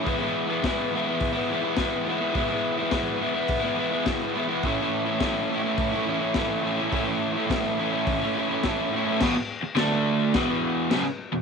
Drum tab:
CC |--------|--------|--------|--------|
HH |o-o-o-o-|o-o-o-o-|o-o-o-o-|o-o-o-o-|
SD |--o---o-|--o---o-|--o---o-|--o---o-|
BD |o-o-o-o-|o-o-o-o-|o-o-o-o-|o-o-o-o-|

CC |x-x-x-x-|
HH |--------|
SD |o-o-o-o-|
BD |o---o---|